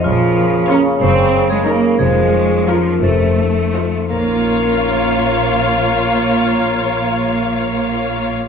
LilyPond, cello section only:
\new Staff \with { instrumentName = "Cello section" } { \time 6/8 \key bes \minor \tempo 4. = 55 f4 des'8 c'8. aes16 bes8 | aes4 f8 a4. | bes2.~ | bes2. | }